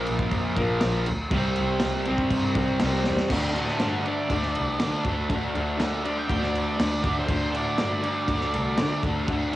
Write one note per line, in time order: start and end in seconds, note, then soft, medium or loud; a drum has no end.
0.00 0.55 A#2 medium
0.00 0.56 F3 medium
0.00 0.55 A#3 loud
0.07 0.24 A#1 medium
0.07 crash medium
0.19 kick medium
0.31 0.47 F2 loud
0.31 kick loud
0.31 crash medium
0.56 0.72 A#1 medium
0.56 1.06 F3 medium
0.56 1.05 A#3 medium
0.56 kick loud
0.56 crash medium
0.61 1.07 A#2 medium
0.81 0.99 A#1 loud
0.81 snare loud
0.81 crash medium
1.06 1.23 D2 medium
1.06 crash medium
1.31 1.46 C2 loud
1.31 2.04 C3 medium
1.31 2.06 G3 loud
1.31 kick loud
1.31 crash medium
1.36 2.05 C4 medium
1.56 1.73 C2 loud
1.56 crash medium
1.80 1.98 C2 medium
1.80 snare loud
1.80 crash medium
2.05 2.23 C2 medium
2.05 2.81 G3 medium
2.05 2.79 C4 medium
2.05 crash medium
2.11 2.79 C3 medium
2.18 kick medium
2.30 2.46 G2 medium
2.30 kick loud
2.30 crash loud
2.55 2.71 C2 medium
2.55 kick loud
2.55 crash medium
2.80 2.97 C2 loud
2.80 3.29 C3 medium
2.80 3.30 G3 medium
2.80 snare loud
2.80 crash loud
2.85 3.31 C4 loud
2.92 snare soft
3.04 3.22 E2 medium
3.04 snare medium
3.17 snare loud
3.30 3.54 D2 loud
3.30 3.79 D3 medium
3.30 3.58 A3 medium
3.30 3.56 F4 medium
3.30 3.56 A4 medium
3.30 kick loud
3.30 crash loud
3.30 crash medium
3.34 3.53 D4 loud
3.54 3.84 D4 medium
3.54 3.79 G4 medium
3.54 crash medium
3.58 3.81 A2 medium
3.58 3.82 A3 medium
3.58 3.81 C5 medium
3.68 snare soft
3.79 4.29 G2 medium
3.79 4.30 D3 medium
3.79 4.09 A3 medium
3.79 snare loud
3.79 crash medium
3.83 4.04 D4 medium
3.83 4.05 A4 medium
3.83 4.06 D5 medium
4.04 4.33 D4 medium
4.04 5.03 D5 loud
4.04 crash soft
4.09 4.31 A3 medium
4.30 4.54 D2 loud
4.30 4.79 D3 loud
4.30 4.82 A3 loud
4.30 4.84 D4 loud
4.30 kick medium
4.30 crash medium
4.42 snare soft
4.55 4.80 C2 medium
4.55 crash medium
4.80 5.30 D3 medium
4.80 5.05 D3 medium
4.80 5.09 A3 medium
4.80 snare loud
4.80 crash medium
4.84 5.05 D4 medium
5.05 5.29 D2 medium
5.05 5.34 D4 medium
5.05 kick medium
5.05 crash medium
5.10 5.32 A3 medium
5.30 5.54 D2 medium
5.30 5.77 D3 medium
5.30 5.59 A3 medium
5.30 kick loud
5.30 crash medium
5.35 5.54 D4 medium
5.54 5.79 D2 medium
5.54 5.82 D4 medium
5.54 crash medium
5.59 5.80 A3 medium
5.77 6.28 D2 medium
5.77 6.28 D3 medium
5.77 6.08 A3 medium
5.77 snare loud
5.77 crash medium
5.83 6.03 D4 medium
6.04 6.32 D4 medium
6.04 6.17 D5 medium
6.04 crash medium
6.08 6.30 A3 soft
6.18 6.42 G5 medium
6.28 6.54 D2 medium
6.28 6.77 D3 loud
6.28 6.80 A3 loud
6.28 kick medium
6.28 crash medium
6.33 6.82 D4 loud
6.42 7.15 D5 medium
6.42 snare soft
6.54 6.78 D2 medium
6.54 crash medium
6.78 7.04 D2 medium
6.78 7.27 D3 medium
6.78 7.07 A3 medium
6.78 snare loud
6.78 crash loud
6.82 7.03 D4 medium
7.03 7.28 D2 loud
7.03 7.32 D4 medium
7.03 kick medium
7.03 crash medium
7.08 7.30 A3 medium
7.20 7.55 C5 medium
7.27 7.53 D2 medium
7.27 7.78 D3 loud
7.27 7.57 A3 loud
7.27 kick loud
7.27 crash medium
7.32 7.52 D4 loud
7.53 7.78 A2 medium
7.53 7.82 D4 medium
7.53 crash medium
7.57 7.80 A3 medium
7.57 9.01 D5 loud
7.78 8.27 G2 medium
7.78 8.27 D3 medium
7.78 8.07 A3 medium
7.78 snare loud
7.78 crash medium
7.83 8.02 D4 medium
8.02 8.32 D4 medium
8.02 crash medium
8.07 8.30 A3 medium
8.28 8.52 D2 medium
8.28 8.78 D3 loud
8.28 8.80 A3 loud
8.28 kick medium
8.28 crash medium
8.33 8.82 D4 loud
8.41 snare soft
8.54 8.78 C2 medium
8.54 crash medium
8.78 9.27 D3 medium
8.78 9.03 D3 loud
8.78 9.07 A3 medium
8.78 snare loud
8.78 crash medium
8.82 9.03 D4 medium
9.03 9.27 D2 loud
9.03 9.32 D4 medium
9.03 kick medium
9.03 crash medium
9.08 9.30 A3 medium
9.27 9.52 D2 medium
9.27 9.56 D3 medium
9.27 9.56 A3 medium
9.27 kick loud
9.27 crash medium
9.32 9.52 D4 loud